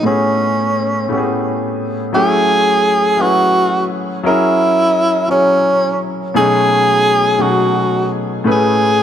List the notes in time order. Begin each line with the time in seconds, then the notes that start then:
0.03 A2 A3 B3 C#4 G#4
1.09 A2 A3 B3 C#4 G4
1.18 G#4
2.13 F#3 A3 C#4 E4 G#4
3.17 F#3 C#4 E4 G#4 B4
3.21 F#4
4.23 F#3 C#4 E4 G#4 A#4
5.28 F#3 C#4 E4 G#4 C#5
6.34 B2 F#3 A3 C#4 D#4 G#4
7.39 B2 F#3 A3 C#4 D#4 F#4 G#4
8.44 A2 A3 C#4 G#4 B4
8.52 G#4